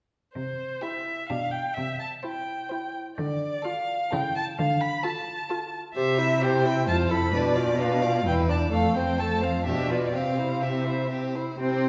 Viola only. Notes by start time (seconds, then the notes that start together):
0.82 E4
1.30 D4
2.24 E4
2.71 E4
3.65 F4
4.12 E4
5.04 F4
5.50 F4
5.96 G4
6.18 E4
6.41 G4
6.65 E4
6.88 F4
7.10 E4
7.34 D4
7.56 F4
7.80 D4
8.03 F4
8.27 E4
8.49 D4
8.71 A3
8.96 C4
9.19 A3
9.42 C4
9.66 D4
9.91 F4
10.14 C4
10.38 E4
10.63 C4
10.87 E4
11.11 C4
11.35 E4
11.59 C3